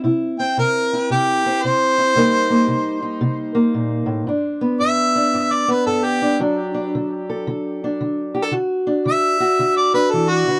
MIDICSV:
0, 0, Header, 1, 3, 480
1, 0, Start_track
1, 0, Tempo, 530973
1, 32, Time_signature, 4, 2, 24, 8
1, 9579, End_track
2, 0, Start_track
2, 0, Title_t, "Harmonica"
2, 0, Program_c, 0, 22
2, 351, Note_on_c, 0, 79, 83
2, 506, Note_off_c, 0, 79, 0
2, 532, Note_on_c, 0, 70, 93
2, 985, Note_off_c, 0, 70, 0
2, 1006, Note_on_c, 0, 67, 94
2, 1473, Note_on_c, 0, 72, 102
2, 1487, Note_off_c, 0, 67, 0
2, 2872, Note_off_c, 0, 72, 0
2, 4345, Note_on_c, 0, 76, 106
2, 4992, Note_on_c, 0, 74, 87
2, 5005, Note_off_c, 0, 76, 0
2, 5163, Note_on_c, 0, 71, 76
2, 5177, Note_off_c, 0, 74, 0
2, 5294, Note_off_c, 0, 71, 0
2, 5300, Note_on_c, 0, 69, 82
2, 5458, Note_on_c, 0, 67, 91
2, 5471, Note_off_c, 0, 69, 0
2, 5772, Note_off_c, 0, 67, 0
2, 8199, Note_on_c, 0, 76, 98
2, 8817, Note_off_c, 0, 76, 0
2, 8830, Note_on_c, 0, 74, 93
2, 8981, Note_off_c, 0, 74, 0
2, 8986, Note_on_c, 0, 71, 92
2, 9136, Note_on_c, 0, 69, 81
2, 9149, Note_off_c, 0, 71, 0
2, 9304, Note_on_c, 0, 66, 90
2, 9318, Note_off_c, 0, 69, 0
2, 9579, Note_off_c, 0, 66, 0
2, 9579, End_track
3, 0, Start_track
3, 0, Title_t, "Steel-string acoustic guitar"
3, 0, Program_c, 1, 25
3, 0, Note_on_c, 1, 60, 59
3, 34, Note_on_c, 1, 48, 68
3, 41, Note_on_c, 1, 64, 58
3, 352, Note_off_c, 1, 60, 0
3, 356, Note_on_c, 1, 60, 57
3, 477, Note_off_c, 1, 48, 0
3, 519, Note_on_c, 1, 48, 66
3, 822, Note_off_c, 1, 64, 0
3, 842, Note_on_c, 1, 64, 58
3, 959, Note_off_c, 1, 48, 0
3, 996, Note_on_c, 1, 48, 72
3, 1305, Note_off_c, 1, 60, 0
3, 1320, Note_on_c, 1, 60, 69
3, 1437, Note_off_c, 1, 48, 0
3, 1485, Note_on_c, 1, 48, 69
3, 1780, Note_off_c, 1, 64, 0
3, 1791, Note_on_c, 1, 64, 62
3, 1921, Note_off_c, 1, 48, 0
3, 1934, Note_off_c, 1, 64, 0
3, 1937, Note_off_c, 1, 60, 0
3, 1948, Note_on_c, 1, 48, 75
3, 1952, Note_on_c, 1, 55, 66
3, 1959, Note_on_c, 1, 58, 61
3, 1965, Note_on_c, 1, 63, 60
3, 1975, Note_on_c, 1, 70, 65
3, 2251, Note_off_c, 1, 58, 0
3, 2262, Note_on_c, 1, 58, 63
3, 2392, Note_off_c, 1, 48, 0
3, 2420, Note_on_c, 1, 48, 71
3, 2724, Note_off_c, 1, 63, 0
3, 2735, Note_on_c, 1, 63, 62
3, 2868, Note_off_c, 1, 48, 0
3, 2901, Note_on_c, 1, 48, 80
3, 3195, Note_off_c, 1, 58, 0
3, 3206, Note_on_c, 1, 58, 65
3, 3348, Note_off_c, 1, 48, 0
3, 3382, Note_on_c, 1, 46, 62
3, 3667, Note_off_c, 1, 46, 0
3, 3670, Note_on_c, 1, 45, 67
3, 3844, Note_off_c, 1, 63, 0
3, 3846, Note_off_c, 1, 55, 0
3, 3853, Note_off_c, 1, 45, 0
3, 3858, Note_off_c, 1, 70, 0
3, 3860, Note_on_c, 1, 43, 69
3, 3861, Note_off_c, 1, 58, 0
3, 3874, Note_on_c, 1, 62, 60
3, 4169, Note_on_c, 1, 59, 62
3, 4308, Note_off_c, 1, 43, 0
3, 4338, Note_on_c, 1, 43, 69
3, 4657, Note_off_c, 1, 62, 0
3, 4660, Note_on_c, 1, 62, 62
3, 4787, Note_off_c, 1, 43, 0
3, 4825, Note_on_c, 1, 43, 70
3, 5126, Note_off_c, 1, 59, 0
3, 5136, Note_on_c, 1, 59, 66
3, 5271, Note_off_c, 1, 43, 0
3, 5303, Note_on_c, 1, 43, 71
3, 5618, Note_off_c, 1, 62, 0
3, 5621, Note_on_c, 1, 62, 63
3, 5750, Note_off_c, 1, 43, 0
3, 5766, Note_off_c, 1, 59, 0
3, 5777, Note_off_c, 1, 62, 0
3, 5782, Note_on_c, 1, 54, 59
3, 5784, Note_on_c, 1, 50, 71
3, 5788, Note_on_c, 1, 62, 56
3, 6092, Note_off_c, 1, 62, 0
3, 6096, Note_on_c, 1, 62, 59
3, 6231, Note_off_c, 1, 50, 0
3, 6281, Note_on_c, 1, 50, 65
3, 6595, Note_on_c, 1, 69, 62
3, 6720, Note_off_c, 1, 50, 0
3, 6755, Note_on_c, 1, 50, 76
3, 7057, Note_off_c, 1, 62, 0
3, 7087, Note_on_c, 1, 62, 66
3, 7197, Note_off_c, 1, 50, 0
3, 7237, Note_on_c, 1, 50, 69
3, 7541, Note_off_c, 1, 69, 0
3, 7544, Note_on_c, 1, 67, 65
3, 7615, Note_off_c, 1, 67, 0
3, 7615, Note_on_c, 1, 69, 55
3, 7679, Note_off_c, 1, 50, 0
3, 7687, Note_off_c, 1, 54, 0
3, 7697, Note_on_c, 1, 50, 74
3, 7703, Note_on_c, 1, 66, 57
3, 7704, Note_off_c, 1, 62, 0
3, 7705, Note_off_c, 1, 69, 0
3, 8017, Note_on_c, 1, 62, 62
3, 8150, Note_off_c, 1, 50, 0
3, 8185, Note_on_c, 1, 50, 76
3, 8489, Note_off_c, 1, 66, 0
3, 8500, Note_on_c, 1, 66, 58
3, 8635, Note_off_c, 1, 50, 0
3, 8671, Note_on_c, 1, 50, 73
3, 8974, Note_off_c, 1, 62, 0
3, 8985, Note_on_c, 1, 62, 70
3, 9118, Note_off_c, 1, 50, 0
3, 9162, Note_on_c, 1, 52, 61
3, 9466, Note_off_c, 1, 52, 0
3, 9470, Note_on_c, 1, 50, 61
3, 9579, Note_off_c, 1, 50, 0
3, 9579, Note_off_c, 1, 62, 0
3, 9579, Note_off_c, 1, 66, 0
3, 9579, End_track
0, 0, End_of_file